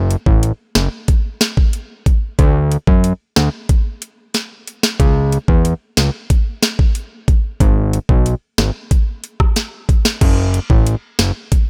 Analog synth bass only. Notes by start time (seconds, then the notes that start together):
Already playing: F#1
0.26 A1
0.76 F#1
2.39 D2
2.87 F#2
3.36 D2
5.00 C#2
5.48 E2
5.98 C#2
7.60 G#1
8.09 B1
8.58 G#1
10.21 F#1
10.70 A1
11.19 F#1